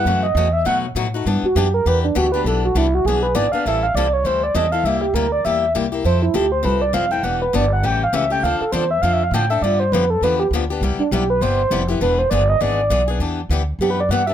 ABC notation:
X:1
M:4/4
L:1/8
Q:"Swing" 1/4=201
K:Em
V:1 name="Soft synth lead"
f ^d2 e f z3 | z F G ^A B D F B | A F E F ^G B d =f | [K:Am] e f d ^c =c d ^d f |
e G _B d e2 z2 | c E G c B d f g | ^f B d f g =f e g | f A c e (3f e f g e |
d c B A B G z2 | z D G B c3 z | B c d ^d =d3 z | [K:Em] z4 (3G B d f e |]
V:2 name="Steel-string acoustic guitar"
[^C,E,A,^CF] z [C,E,A,CF] z [B,,F,A,^DF] z [B,,F,A,DF] [A,DF] | [E,B,DG] z [E,B,DG] z [E,B,DG] z [E,B,DG] [B,DG] | [E,B,DG] z [E,B,DG] z [E,B,D^G] z [E,B,DG] [B,DG] | [K:Am] [E,G,CEA] z [E,G,CEA] z [E,G,CEA] z [E,G,CEA] [CEA] |
[C,G,_B,EG] z [C,G,B,EG] z [C,G,B,EG] z [C,G,B,EG] [B,EG] | [F,CEA] z [F,CEA] z [F,CEA] z [F,CEA] [CEA] | [E,B,DG] z [E,B,DG] z [^C,E,A,^CG] z [C,E,A,CG] [A,CG] | [D,F,CDA] z [D,F,CDA] z [D,F,CDA] z [D,F,CDA] [CDA] |
[D,F,B,DG] z [D,F,B,DG] z [D,F,B,DG] z [D,F,B,DG] [B,DG] | [C,G,B,EG] z [C,G,B,EG] z [C,G,B,EG] z [C,G,B,EG] [B,EG] | [E,B,D^G] z [E,B,DG] z [E,B,DG] z [E,B,DG] [B,DG] | [K:Em] [E,B,DG] z [E,B,DG] z [E,B,DG] z [E,B,DG] [B,DG] |]
V:3 name="Upright bass" clef=bass
F,,2 E,,2 B,,2 A,,2 | G,, z F,,2 E,,2 D,,2 | B,,,2 C,,2 B,,,2 ^G,,, z | [K:Am] A,,,2 C,,2 D,,2 E,,2 |
C,,2 D,,2 E,,2 C,,2 | F,,2 D,,2 C,,2 F,,,2 | E,,,2 G,,,2 A,,,2 ^C,,2 | D,, z E,,2 F,,2 A,,2 |
G,,2 F,,2 E,,2 D,,2 | C,, z B,,,2 G,,,2 F,,,2 | E,,,2 G,,,2 ^G,,,2 B,,,2 | [K:Em] E,,2 D,,2 F,,2 G,,2 |]